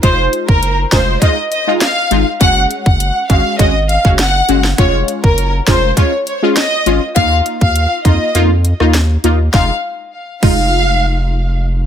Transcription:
<<
  \new Staff \with { instrumentName = "Violin section" } { \time 4/4 \key f \phrygian \tempo 4 = 101 c''16 r8 bes'8 r16 c''8 ees''16 r16 ees''16 r16 f''8. r16 | ges''16 r8 ges''8 r16 f''8 ees''16 r16 f''16 r16 ges''8. r16 | des''16 r8 bes'8 r16 c''8 des''16 r16 des''16 r16 ees''8. r16 | f''16 r8 f''8 r16 ees''8 r2 |
f''8 r4 f''4. r4 | }
  \new Staff \with { instrumentName = "Synth stab" } { \time 4/4 \key f \phrygian <aes ees' f'>4. <aes ees' f'>8 <aes ees' f'>16 r8 <aes ees' f'>16 r8 <aes ees' f'>16 r16 | <aes des' ges'>4. <aes des' ges'>8 <aes des' ges'>16 r8 <aes des' ges'>16 r8 <aes des' ges'>16 r16 | <aes des' f'>4. <aes des' f'>8 <aes des' f'>16 r8 <aes des' f'>16 r8 <aes des' f'>16 r16 | <bes ees' f'>4. <bes ees' f'>8 <bes ees' f'>16 r8 <bes ees' f'>16 r8 <bes ees' f'>16 r16 |
<aes ees' f'>16 r4 r16 <aes ees' f'>2~ <aes ees' f'>8 | }
  \new Staff \with { instrumentName = "Sub bass" } { \clef bass \time 4/4 \key f \phrygian f,,8 r16 ges,,8. f,,8 r4. aes,,16 r16 | ges,,8 r16 ges,,8 r16 aes,,16 r16 aes,,8. ges,,8. ges,,8 | f,,8 r16 ges,,8. f,,8 r4. aes,,16 r16 | ees,8 r16 ees,8 r16 f,16 r16 f,8. ees,8. ees,8 |
f,,16 r4 r16 f,,2~ f,,8 | }
  \new DrumStaff \with { instrumentName = "Drums" } \drummode { \time 4/4 <hh bd>8 hh16 bd16 hh8 <hh bd sn>8 <hh bd>8 hh8 <hh sn>8 hh8 | <hh bd>8 hh16 bd16 hh8 <hh bd>8 <hh bd>8 hh16 bd16 <hh sn>8 hh16 sn16 | <hh bd>8 hh16 bd16 hh8 <hh bd sn>8 <hh bd>8 hh8 <hh sn>8 hh8 | <hh bd>8 hh16 bd16 hh8 <hh bd>8 hh8 hh16 ss16 <hh sn>8 hh8 |
<bd sn>4 r8 <cymc bd>8 r4 r4 | }
>>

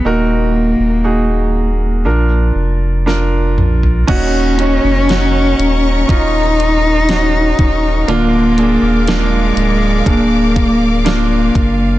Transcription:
<<
  \new Staff \with { instrumentName = "String section" } { \time 4/4 \key bes \phrygian \tempo 4 = 60 << { r1 | <ees'' bes'' des'''>1 | <d'' f'' d'''>1 | } \\ { r1 | bes'1~ | bes'1 | } >> }
  \new Staff \with { instrumentName = "Grand piano" } { \time 4/4 \key bes \phrygian <ees' ges' bes'>4 <ees' ges' aes'>4 <d' f' bes'>4 <d' f' bes'>4 | <des' ees' ges'>8 <des' ees' ges'>8 <des' ees' ges'>4 <des' ees' f'>4 <des' ees' ges'>4 | <bes d' f'>8 <bes d' aes'>8 <bes d' f'>4 <bes d' aes'>4 <bes d' f'>4 | }
  \new Staff \with { instrumentName = "Grand piano" } { \clef bass \time 4/4 \key bes \phrygian bes,4. r2 r8 | bes,4. r2 r8 | d4. r2 r8 | }
  \new Staff \with { instrumentName = "Cello" } { \time 4/4 \key bes \phrygian bes2 r2 | des'2 ees'2 | bes4 aes4 bes4 bes8. r16 | }
  \new Staff \with { instrumentName = "Sub bass" } { \clef bass \time 4/4 \key bes \phrygian ees,,8. ees,,4~ ees,,16 bes,,8 f,,4 bes,,8 | ees,,8. f,,8. ees,,8 ees,,4. ees,,8 | d,,8. ees,,8. d,,8 d,,4. ges,,8 | }
  \new DrumStaff \with { instrumentName = "Drums" } \drummode { \time 4/4 r4 r4 r4 sn8 toml16 tomfh16 | <cymc hh bd>8 hh8 <hh sn>8 hh8 <hh bd>8 hh8 <hh sn>8 <hh bd>8 | hh8 hh8 <hh sn>8 hh8 <hh bd>8 <hh bd>8 <hh sn>8 <hh bd>8 | }
>>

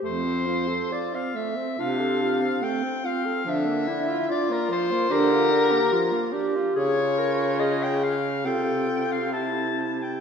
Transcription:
<<
  \new Staff \with { instrumentName = "Soprano saxophone" } { \time 4/4 \key f \major \tempo 4 = 71 c''4 d''16 f''16 e''8 f''4 g''8 f''8 | e''4 d''16 bes'16 c''8 bes'4.~ bes'16 r16 | des''4 ees''16 g''16 f''8 g''8. f''16 a''8. g''16 | }
  \new Staff \with { instrumentName = "Clarinet" } { \time 4/4 \key f \major r2 d'4 c'4 | d'8 e'8 f'4 g'4 f'8 g'8 | aes'8 bes'8 aes'8 r8 a'4 e'4 | }
  \new Staff \with { instrumentName = "Alto saxophone" } { \time 4/4 \key f \major a16 c'16 f'16 a'16 f'16 c'16 a16 c'16 f'16 a'16 f'16 c'16 a16 c'16 f'16 a'16 | f16 bes16 d'16 f'16 d'16 bes16 f16 bes16 d'16 f'16 d'16 bes16 f16 bes16 d'16 f'16 | f'2 f'4 e'4 | }
  \new Staff \with { instrumentName = "Baritone saxophone" } { \clef bass \time 4/4 \key f \major f,4 r4 c4 r4 | d4 r4 d4 r4 | des2 c2 | }
>>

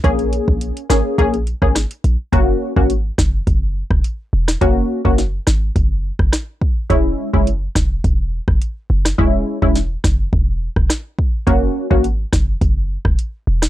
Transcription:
<<
  \new Staff \with { instrumentName = "Synth stab" } { \time 4/4 \key fis \mixolydian \tempo 4 = 105 <ais cis' gis'>4. <ais cis' gis'>8 <ais cis' gis'>16 r8 <ais cis' gis'>16 r4 | <ais cis' fis'>8. <ais cis' fis'>16 r2. | <ais cis' fis'>8. <ais cis' fis'>16 r2. | <gis cis' e'>8. <gis cis' e'>16 r2. |
<gis cis' e'>8. <gis cis' e'>16 r2. | <ais cis' fis'>8. <ais cis' fis'>16 r2. | }
  \new Staff \with { instrumentName = "808-style bass" } { \clef bass \time 4/4 \key fis \mixolydian ais,,8. ais,,8 r16 gis,,16 r16 ais,,8. gis,,8 r16 ais,,16 r16 | fis,,8 r16 gis,,8. fis,,8 fis,,8. e,,16 r8 e,,8 | fis,,8 r16 fis,,8. gis,,8 fis,,8. fis,,16 r4 | e,,8 r16 fis,,8. e,,8 e,,8. fis,,16 r8 fis,,8 |
e,,8 r16 e,,8. fis,,8 e,,8. e,,16 r4 | fis,,8 r16 gis,,8. fis,,8 fis,,8. e,,16 r8 e,,8 | }
  \new DrumStaff \with { instrumentName = "Drums" } \drummode { \time 4/4 <hh bd>16 hh16 hh16 bd16 hh16 hh16 <hh ss sn>8 <hh bd>16 hh16 hh16 <bd ss>16 <hh ss sn>16 hh16 hh8 | <hh bd>8. bd16 hh8 <bd ss sn>8 <hh bd>8. <bd ss>16 hh8. <ss sn>16 | <hh bd>8. bd16 <hh sn>8 <ss sn>8 <hh bd>8. <bd ss>16 <hh ss sn>8 bd8 | <hh bd>8. bd16 hh8 <bd ss sn>8 <hh bd>8. <bd ss>16 hh8. <ss sn>16 |
bd8. bd16 sn8 <bd ss sn>8 bd8. <bd ss>16 <ss sn>8 bd8 | <hh bd>8. bd16 hh8 <bd ss sn>8 <hh bd>8. <bd ss>16 hh8. <ss sn>16 | }
>>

